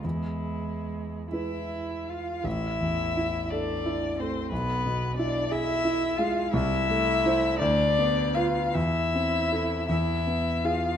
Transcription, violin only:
\new Staff \with { instrumentName = "Violin" } { \time 6/8 \key a \minor \tempo 4. = 55 e'4. e''4 f''8 | e''4. d''4 c''8 | b'4 d''8 e''4 f''8 | e''4. d''4 f''8 |
e''4. e''4 f''8 | }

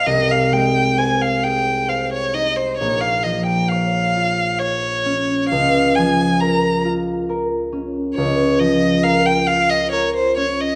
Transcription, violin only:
\new Staff \with { instrumentName = "Violin" } { \time 3/4 \key bes \dorian \tempo 4 = 67 ees''16 f''16 g''8 aes''16 f''16 g''8 f''16 des''16 ees''16 c''16 | des''16 f''16 ees''16 g''16 f''4 des''4 | f''8 aes''8 bes''8 r4. | des''8 ees''8 f''16 g''16 f''16 ees''16 des''16 c''16 des''16 ees''16 | }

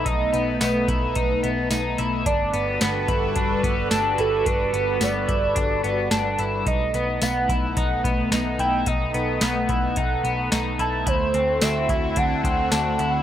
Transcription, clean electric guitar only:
\new Staff \with { instrumentName = "Clean electric guitar" } { \time 4/4 \key g \major \tempo 4 = 109 dis'8 b8 b8 e'8 dis'8 b8 dis'8 e'8 | d'8 b8 b8 e'8 d'8 b8 d'8 e'8 | d'8 b8 b8 e'8 d'8 b8 d'8 e'8 | dis'8 b8 b8 e'8 dis'8 b8 dis'8 e'8 |
dis'8 b8 b8 e'8 dis'8 b8 dis'8 e'8 | e'8 c'8 c'8 e'8 d'8 c'8 d'8 e'8 | }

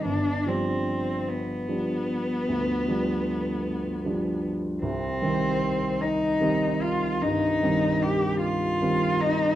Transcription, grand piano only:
\new Staff \with { instrumentName = "Grand piano" } { \clef bass \time 12/8 \key c \minor \tempo 4. = 50 g,,8 <f g d'>4. <f g d'>4 d,8 <f g d'>4. <f g d'>4 | c,8 <ees g c'>4. <ees g c'>4 g,8 <ees g c'>4. <ees g c'>4 | }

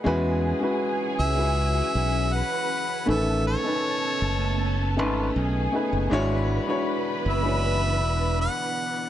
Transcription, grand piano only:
\new Staff \with { instrumentName = "Grand piano" } { \time 4/4 \key e \major \tempo 4 = 79 <gis cis' e' fis' b'>8 r16 <gis cis' e' fis' b'>8. r16 <gis cis' e' fis' b'>4. r8. | <dis a cis' a' b'>8 r16 <a cis' dis' a' b'>4~ <a cis' dis' a' b'>16 r8 <a cis' dis' a' b'>8. r16 <a cis' dis' gis' b'>8 | <gis d' e' fis' cis''>8 r16 <gis d' e' fis' cis''>8. r16 <gis d' e' fis' cis''>4. r8. | }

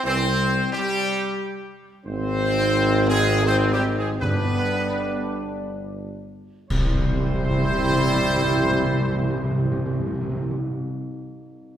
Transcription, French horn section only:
\new Staff \with { instrumentName = "French horn section" } { \time 3/4 \key c \major \tempo 4 = 74 c'4 g4. r8 | c'4. aes8 \tuplet 3/2 { c'8 g8 aes8 } | b2 r4 | c'2.~ |
c'2. | }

